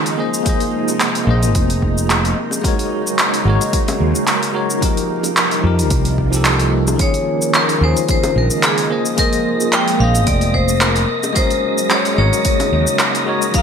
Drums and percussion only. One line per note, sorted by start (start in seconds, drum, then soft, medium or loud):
0.06 open hi-hat soft
0.06 shaker soft
0.34 shaker medium
0.46 kick loud
0.46 open hi-hat medium
0.46 shaker soft
0.60 open hi-hat soft
0.60 shaker soft
0.88 high bongo soft
0.88 shaker medium
1.00 clap medium
1.00 open hi-hat medium
1.00 shaker soft
1.15 open hi-hat soft
1.15 shaker soft
1.43 open hi-hat soft
1.43 shaker medium
1.55 kick loud
1.55 open hi-hat medium
1.55 shaker medium
1.70 open hi-hat soft
1.70 shaker soft
1.82 kick medium
1.98 shaker medium
2.10 clap medium
2.10 open hi-hat medium
2.10 shaker medium
2.25 open hi-hat soft
2.25 shaker soft
2.51 high bongo soft
2.51 shaker medium
2.64 kick loud
2.64 open hi-hat medium
2.64 shaker soft
2.79 open hi-hat soft
2.79 shaker soft
3.07 shaker medium
3.19 clap medium
3.19 open hi-hat medium
3.19 shaker soft
3.34 open hi-hat soft
3.34 shaker soft
3.61 open hi-hat soft
3.61 shaker medium
3.73 kick loud
3.73 open hi-hat medium
3.73 shaker soft
3.88 open hi-hat soft
3.88 high bongo medium
3.88 shaker soft
4.15 shaker medium
4.27 clap medium
4.27 open hi-hat medium
4.27 shaker medium
4.43 open hi-hat soft
4.43 shaker soft
4.70 shaker medium
4.82 kick loud
4.82 open hi-hat medium
4.82 shaker soft
4.97 open hi-hat soft
4.97 shaker soft
5.23 open hi-hat soft
5.23 high bongo soft
5.23 shaker medium
5.37 clap medium
5.37 open hi-hat medium
5.37 shaker medium
5.51 open hi-hat soft
5.51 shaker soft
5.79 open hi-hat soft
5.79 shaker medium
5.90 kick loud
5.90 open hi-hat medium
5.90 shaker medium
6.05 open hi-hat soft
6.05 shaker soft
6.18 kick medium
6.33 open hi-hat soft
6.33 shaker medium
6.45 clap loud
6.45 open hi-hat medium
6.45 shaker medium
6.60 open hi-hat soft
6.60 shaker soft
6.87 high bongo soft
6.87 shaker medium
6.99 kick loud
6.99 open hi-hat medium
6.99 shaker soft
7.14 open hi-hat soft
7.14 shaker soft
7.42 shaker medium
7.54 clap medium
7.54 open hi-hat medium
7.54 shaker soft
7.69 open hi-hat soft
7.69 shaker soft
7.97 open hi-hat soft
7.97 shaker medium
8.09 kick loud
8.09 open hi-hat medium
8.09 shaker medium
8.23 open hi-hat soft
8.23 high bongo medium
8.23 shaker soft
8.50 shaker medium
8.63 clap loud
8.63 open hi-hat medium
8.63 shaker medium
8.78 open hi-hat soft
8.78 shaker soft
9.06 shaker medium
9.18 kick loud
9.18 open hi-hat medium
9.18 shaker medium
9.33 open hi-hat soft
9.33 shaker soft
9.60 high bongo soft
9.60 shaker medium
9.73 clap loud
9.73 open hi-hat medium
9.73 shaker medium
9.88 open hi-hat soft
9.88 shaker soft
10.15 open hi-hat soft
10.15 shaker medium
10.27 kick loud
10.27 open hi-hat medium
10.27 shaker medium
10.41 open hi-hat soft
10.41 shaker soft
10.54 kick medium
10.69 shaker medium
10.81 clap loud
10.81 open hi-hat medium
10.81 shaker medium
10.96 open hi-hat soft
10.96 shaker soft
11.23 high bongo medium
11.23 shaker medium
11.36 kick loud
11.36 open hi-hat medium
11.36 shaker medium
11.50 open hi-hat soft
11.50 shaker soft
11.78 shaker medium
11.90 clap medium
11.90 open hi-hat medium
11.90 shaker soft
12.05 open hi-hat soft
12.05 shaker soft
12.33 open hi-hat soft
12.33 shaker medium
12.45 kick loud
12.45 open hi-hat medium
12.45 shaker medium
12.60 open hi-hat soft
12.60 high bongo medium
12.60 shaker soft
12.87 shaker medium
12.99 clap loud
12.99 open hi-hat medium
12.99 shaker medium
13.15 open hi-hat soft
13.15 shaker soft
13.42 shaker medium
13.54 kick loud
13.54 open hi-hat medium
13.54 shaker medium